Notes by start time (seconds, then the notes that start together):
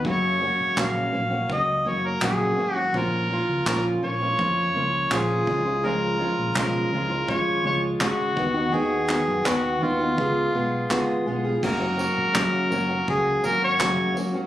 0.04 F#1 F#2 C#3 F#3 A#3 C#4 F#4, kick
0.08 C#5
0.40 F#3 A#3 C#4 F#4
0.60 G#1
0.77 A#1 F#2 C#3 F#3 A#3 C#4 F#4 F5, kick, clap
1.12 A#1 F#3 A#3 C#4 F#4
1.31 F#3 A#3 C#4 F#4
1.49 C#2 F#3 A#3 C#4 F#4 D#5, kick
1.85 F#1 F#3 A#3 C#4 F#4 C#5
2.07 A#4
2.21 A#1 F#2 C#3 F#3 A#3 C#4 F#4 G#4, kick, clap
2.58 G#1 F#3 A#3 C#4 F#4
2.75 A#3 C#4 F#4
2.79 F#3
2.94 A#1 A#2 F3 A#3 C#4 F4 A#4, kick
3.30 F3 A#3 C#4 F4
3.49 C#2
3.66 A#1 A#2 F3 A#3 C#4 F4 A#4, kick, clap
4.02 A#1 F3 A#3 C#4 F4 C#5
4.21 A#3 C#4 F4
4.38 F2 F3 A#3 C#4 F4, kick
4.75 C#2 F3 A#3 C#4 F4
5.11 A#1 A#2 F3 A#3 C#4 F4 G#4, kick, clap
5.47 C#2 F3 G#3 C#4 F4, kick
5.65 G#3 C#4 F4
5.83 C#3 F3 G#3 C#4 F4 A#4
6.19 F3 G#3 C#4 F4
6.38 A#1
6.56 B1 C#3 F3 G#3 C#4 F4 A#4, kick, clap
6.92 C#2 F3 G#3 C#4 F4
7.10 G#3 C#4 F4
7.28 G#1 F3 G#3 C#4 F4 C#5, kick
7.64 C#2 F3 G#3 C#4 F4 C#5
8.00 G#1 C#3 G#3 C#4 F#4, kick, clap
8.36 D#2 D#3 B3 D#4 F#4, kick
8.54 B3 D#4 F#4
8.72 D#2 D#3 B3 D#4 F#4 G#4
9.08 D#3 B3 D#4 F#4, clap
9.28 F#2
9.44 D#2 D#3 B3 D#4 F#4, kick, clap
9.80 D#2 D#3 B3 D#4 F4 F#4
9.99 B3 D#4 F#4
10.17 C#2 G#3 B3 F4 G#4, kick
10.53 B1 G#3 B3 F4 G#4
10.90 C#3 G#3 B3 F4 G#4, kick, clap
11.26 B1 G#3 B3 F4 G#4
11.44 B3 F4 G#4
11.62 F#1 F#2 C#3 F#3 A#3 C#4 F#4 A#4, kick, crash
11.80 F#3 A#3 C#4 F#4
11.98 F#3 A#3 C#4 F#4, tambourine
12.17 G#1
12.34 F#2 C#3 F#3 A#3 C#4 F#4, kick, clap
12.71 F#1 F#3 A#3 C#4 F#4, tambourine
12.89 F#3 A#3 C#4 F#4
13.08 C#2 G#4, kick
13.43 G#1 F#3 A#3 C#4 F#4 A#4, tambourine
13.64 C#5
13.79 F#2 C#3 F#3 A#3 C#4 F#4, kick, clap
14.15 F#3 A#3 C#4 F#4, tambourine
14.34 F#3 A#3 C#4 F#4